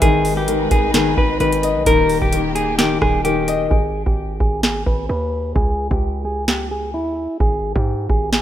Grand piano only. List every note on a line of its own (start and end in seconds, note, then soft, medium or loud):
0.02 0.46 D#3 medium
0.48 0.93 D#3 medium
0.94 1.39 D#3 medium
1.40 1.85 D#3 medium
1.63 1.86 D#5 medium
1.87 2.31 D#3 medium
2.33 2.77 D#3 medium
2.79 3.23 D#3 medium
3.25 3.71 D#3 medium
3.48 3.71 D#5 medium